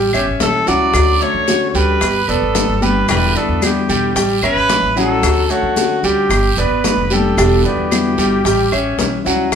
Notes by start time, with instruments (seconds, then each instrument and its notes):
Already playing: upright bass A1
0.13 upright bass G1, grand piano C#4 C#5 E5, trumpet G4, high bongo, high conga, claves, maracas
0.27 upright bass A1
0.39 upright bass B1, nylon-string guitar E3 G3 C#4 E4, trumpet A4, high bongo, low bongo, high conga, short guiro, maracas
0.66 upright bass C#2, grand piano F#3 F#4 F#5, nylon-string guitar G3 C#4 E4, trumpet D5, high conga, short guiro, maracas
0.93 upright bass D2, nylon-string guitar D3 A3 C#4 F#4, high bongo, high conga, long guiro, claves, maracas
1.21 grand piano A3 A4 C#5, trumpet C#5, high conga, maracas
1.34 upright bass D3
1.46 nylon-string guitar D3 A3 C#4 F#4, high bongo, high conga, short guiro, maracas
1.70 trumpet C#5
1.74 upright bass D2, grand piano G3 G5, trumpet B4, high conga, short guiro, maracas
2.01 upright bass G1, muted nylon-string guitar stroke, high bongo, high conga, long guiro, claves, maracas
2.28 upright bass E1, grand piano B3 B4 D5, trumpet A4, high conga, maracas
2.42 upright bass G1
2.54 nylon-string guitar D3 G3 B3 G4, high bongo, low bongo, high conga, short guiro, maracas
2.68 upright bass G1
2.81 nylon-string guitar D3 G3 B3 G4, grand piano G3 G4 G5, trumpet B4, high conga, short guiro, maracas
3.08 upright bass E1, nylon-string guitar B2 D3 G3 B3 E4, grand piano G3 G4 G5, trumpet B4, high bongo, long guiro, claves, maracas
3.36 grand piano B3 B4 D5, trumpet A4, high bongo, high conga, maracas
3.48 upright bass E2
3.62 nylon-string guitar B2 D3 G3 B3 E4, trumpet G4, high bongo, high conga, short guiro, claves, maracas
3.89 upright bass E1, grand piano G3 G4 G5, high bongo, high conga, short guiro, maracas
4.15 upright bass A1, grand piano G3 G4 G5, muted nylon-string guitar stroke, high bongo, high conga, long guiro, maracas
4.42 upright bass G1, grand piano C#4 C#5 E5, trumpet B4, high bongo, high conga, claves, maracas
4.55 upright bass A1
4.69 nylon-string guitar E3 G3 C#4 E4, high bongo, low bongo, high conga, short guiro, maracas
4.82 upright bass A1
4.96 grand piano F#3 F#4 F#5, nylon-string guitar G3 C#4 E4, trumpet A4, high conga, short guiro, maracas
5.22 upright bass D2, nylon-string guitar D3 A3 C#4 F#4, high bongo, high conga, long guiro, claves, maracas
5.50 grand piano A3 A4 C#5, trumpet F#4, high conga, maracas
5.63 upright bass D3
5.76 nylon-string guitar D3 A3 C#4 F#4, high bongo, high conga, short guiro, maracas
6.03 upright bass D2, grand piano G3 G5, trumpet G4, high conga, short guiro, maracas
6.29 upright bass G1, muted nylon-string guitar stroke, high bongo, high conga, long guiro, claves, maracas
6.57 upright bass E1, grand piano B3 B4 D5, trumpet B4, high conga, maracas
6.70 upright bass G1
6.84 nylon-string guitar D3 G3 B3 G4, high bongo, low bongo, high conga, short guiro, maracas
6.97 upright bass F1
7.10 nylon-string guitar D3 G3 B3 G4, grand piano G3 G4 G5, trumpet A4, high conga, short guiro, maracas
7.37 upright bass E1, nylon-string guitar B2 D3 G3 B3 E4, grand piano G3 G4 G5, high bongo, high conga, long guiro, claves, maracas
7.64 grand piano B3 B4 D5, trumpet G4, high bongo, high conga, maracas
7.77 upright bass E2
7.91 nylon-string guitar B2 D3 G3 B3 E4, high bongo, high conga, short guiro, claves, maracas
8.17 upright bass G1, grand piano G3 G4 G5, high bongo, high conga, short guiro, maracas
8.44 upright bass A1, grand piano G3 G4 G5, muted nylon-string guitar stroke, high bongo, high conga, long guiro, maracas
8.71 upright bass A1, grand piano C#4 C#5 E5, high bongo, high conga, claves, maracas
8.98 upright bass B1, nylon-string guitar E3 G3 C#4 E4, high bongo, low bongo, high conga, short guiro, maracas
9.24 upright bass C#2, grand piano F#3 F#4 F#5, nylon-string guitar G3 C#4 E4, high conga, short guiro, maracas
9.52 nylon-string guitar D3